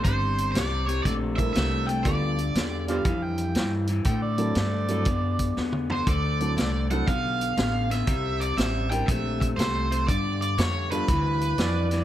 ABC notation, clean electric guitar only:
X:1
M:4/4
L:1/8
Q:"Swing" 1/4=120
K:Gmix
V:1 name="Clean electric guitar" clef=bass
[C,G,]2 [C,G,] [C,G,] [C,A,]2 [C,A,] [C,A,] | [G,,D,]2 [G,,D,] [G,,D,] [G,,E,]2 [G,,E,] [G,,E,] | [D,A,]2 [D,A,] [D,A,] [D,B,]2 [D,B,] [D,B,] | [D,A,]2 [D,A,] [D,A,] [D,B,]2 [D,B,] [D,B,] |
[C,G,]2 [C,G,] [C,G,] [C,A,]2 [C,A,] [C,A,] | [G,,D,]2 [G,,D,] [G,,D,] [G,,E,]2 [G,,E,] [G,,E,] |]